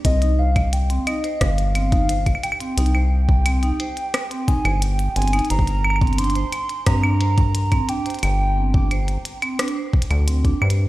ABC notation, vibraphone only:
X:1
M:4/4
L:1/16
Q:1/4=88
K:Cm
V:1 name="Vibraphone"
C E c z2 C E c z2 C E c z2 C | E c z2 C E c z2 C E c z2 C E | c z2 C D c z2 C D c z2 C D c | z2 C D c z2 C D c z2 C D c z |]